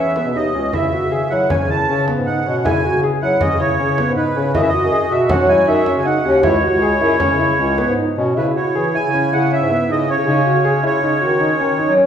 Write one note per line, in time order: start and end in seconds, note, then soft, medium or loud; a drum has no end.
0.00 0.20 E3 medium
0.00 4.51 E3 medium
0.00 0.56 B3 medium
0.00 0.56 G#4 medium
0.00 0.37 E5 medium
0.16 0.29 B3 medium
0.16 frame drum soft
0.25 0.33 B2 medium
0.35 0.52 D#2 medium
0.35 0.48 D#4 medium
0.35 0.75 D#5 medium
0.54 0.72 C#2 medium
0.54 0.68 C#4 medium
0.73 0.89 C#3 medium
0.73 2.63 D#3 medium
0.73 4.51 C#4 medium
0.73 0.87 E4 medium
0.73 1.33 E5 medium
0.73 frame drum medium
0.93 1.06 F#4 medium
1.02 1.25 C#3 medium
1.12 1.25 G#4 medium
1.12 frame drum soft
1.30 1.46 F#3 medium
1.30 1.45 E4 medium
1.30 1.51 F#5 medium
1.50 1.63 C#4 medium
1.50 1.70 G#5 medium
1.50 frame drum medium
1.60 1.83 C#3 medium
1.70 1.83 E4 medium
1.70 2.05 A5 loud
1.89 2.11 C#3 medium
1.89 2.02 C#4 medium
1.89 frame drum soft
2.08 2.21 B3 medium
2.08 frame drum soft
2.18 2.33 G#2 medium
2.26 2.40 D#4 medium
2.26 2.66 F#5 medium
2.46 2.61 B2 medium
2.46 2.59 C#4 medium
2.65 2.81 C#3 medium
2.65 2.78 E4 medium
2.65 3.01 G#5 medium
2.65 frame drum medium
2.84 2.97 F#4 medium
2.94 3.17 C#3 medium
3.03 3.16 G#4 medium
3.03 frame drum soft
3.22 3.37 F#3 medium
3.22 3.35 E4 medium
3.22 3.42 F#5 medium
3.41 3.54 C#4 medium
3.41 3.61 D#5 medium
3.41 frame drum medium
3.51 3.73 C#3 medium
3.59 3.73 E4 medium
3.59 4.12 C#5 loud
3.79 4.01 C#3 medium
3.79 3.92 C#4 medium
3.79 frame drum soft
3.98 4.11 B3 medium
3.98 frame drum medium
4.08 4.22 G#2 medium
4.17 4.30 D#4 medium
4.17 4.52 B4 medium
4.36 4.51 C#3 medium
4.36 4.49 C#4 medium
4.54 4.70 F#2 medium
4.54 8.20 G#3 medium
4.54 6.42 A3 medium
4.54 4.68 E4 medium
4.54 6.42 F#4 medium
4.54 4.62 D#5 medium
4.54 frame drum medium
4.62 4.69 E5 medium
4.68 5.13 D#5 medium
4.74 4.86 F#4 medium
4.83 5.06 F#2 medium
4.92 5.05 G#4 medium
4.92 frame drum soft
5.11 5.26 B2 medium
5.11 5.24 F#4 medium
5.11 5.31 E5 medium
5.29 5.43 C#4 medium
5.29 5.50 F#5 medium
5.29 frame drum medium
5.40 5.62 F#3 medium
5.49 5.62 E4 medium
5.49 5.69 G#5 medium
5.67 5.90 F#2 loud
5.67 5.80 D#4 medium
5.67 6.00 E5 medium
5.67 frame drum soft
5.86 6.00 C#4 medium
5.86 frame drum medium
5.96 6.11 C#3 medium
5.96 6.06 G#5 medium
6.05 6.19 D#4 medium
6.05 6.41 F#5 loud
6.25 6.40 D#2 loud
6.25 6.38 C#4 medium
6.43 6.59 C#2 loud
6.43 8.20 C#3 medium
6.43 8.20 E4 medium
6.43 6.57 E4 medium
6.43 7.94 C#5 medium
6.43 frame drum medium
6.63 6.76 F#4 medium
6.72 6.95 C#2 medium
6.81 6.95 G#4 medium
6.81 frame drum soft
7.01 7.16 F#2 loud
7.01 7.14 E4 medium
7.20 7.33 C#4 medium
7.20 frame drum medium
7.29 7.52 C#3 medium
7.39 7.52 E4 medium
7.58 7.82 C#2 loud
7.58 7.72 C#4 medium
7.58 frame drum soft
7.78 7.91 B3 medium
7.78 frame drum soft
7.87 8.03 G#2 medium
7.97 8.11 D#4 medium
8.17 8.33 B2 loud
8.17 8.31 C#4 medium
8.37 8.52 C#3 medium
8.37 10.26 C#3 medium
8.37 10.26 B3 medium
8.37 8.50 E4 medium
8.37 10.26 E4 medium
8.37 8.46 B4 medium
8.56 8.69 F#4 medium
8.56 8.96 C#5 medium
8.75 8.90 E3 medium
8.75 8.88 G#4 medium
8.95 9.07 E4 medium
8.95 9.34 G#5 medium
9.03 9.26 C#3 medium
9.14 9.26 C#4 medium
9.32 9.55 C#3 loud
9.32 9.45 E4 medium
9.32 9.52 F#5 medium
9.51 9.64 C#4 medium
9.51 9.91 E5 medium
9.61 9.76 G#2 medium
9.70 9.83 B3 medium
9.89 10.12 C#3 medium
9.89 10.02 D#4 medium
9.89 10.10 D#5 medium
10.08 10.21 C#4 medium
10.08 10.84 C#5 medium
10.17 10.25 C#3 medium
10.27 10.57 C#3 loud
10.27 12.06 F#3 medium
10.27 12.06 G#3 medium
10.27 12.06 C#4 medium
10.27 10.40 D#4 medium
10.46 10.59 F#4 medium
10.65 10.87 C#3 medium
10.65 10.77 G#4 medium
10.83 10.96 E4 medium
10.83 11.94 C#5 loud
10.93 11.16 C#3 medium
11.02 11.15 D#4 medium
11.21 11.51 D#3 medium
11.21 11.34 F#4 medium
11.41 11.53 D#4 medium
11.59 11.82 D#3 medium
11.59 11.72 C#4 medium
11.78 11.91 D#4 medium
11.88 12.02 F#3 loud
11.97 12.06 C#4 medium